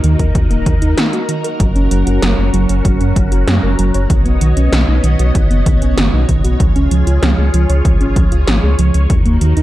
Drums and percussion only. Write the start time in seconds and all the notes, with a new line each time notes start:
0.04 closed hi-hat
0.19 kick, closed hi-hat
0.35 kick, closed hi-hat
0.51 closed hi-hat
0.66 kick, closed hi-hat
0.82 closed hi-hat
0.98 snare, closed hi-hat
1.13 closed hi-hat
1.29 closed hi-hat
1.44 closed hi-hat
1.60 kick, closed hi-hat
1.76 closed hi-hat
1.91 closed hi-hat
2.07 closed hi-hat
2.22 snare, closed hi-hat
2.54 closed hi-hat
2.69 closed hi-hat
2.85 kick, closed hi-hat
3.01 closed hi-hat
3.16 kick, closed hi-hat
3.32 closed hi-hat
3.48 snare, closed hi-hat
3.79 closed hi-hat
3.94 closed hi-hat
4.10 kick, closed hi-hat
4.26 closed hi-hat
4.41 closed hi-hat
4.57 closed hi-hat
4.73 snare, closed hi-hat
5.04 closed hi-hat
5.19 closed hi-hat
5.35 kick, closed hi-hat
5.51 closed hi-hat
5.66 kick, closed hi-hat
5.82 closed hi-hat
5.98 snare, closed hi-hat
6.29 kick, closed hi-hat
6.45 closed hi-hat
6.60 kick, closed hi-hat
6.76 closed hi-hat
6.91 closed hi-hat
7.07 closed hi-hat
7.23 snare, closed hi-hat
7.54 closed hi-hat
7.70 closed hi-hat
7.85 kick, closed hi-hat
8.01 closed hi-hat
8.16 kick, closed hi-hat
8.32 closed hi-hat
8.48 snare, closed hi-hat
8.79 closed hi-hat
8.94 closed hi-hat
9.10 kick, closed hi-hat
9.26 closed hi-hat
9.41 closed hi-hat
9.57 closed hi-hat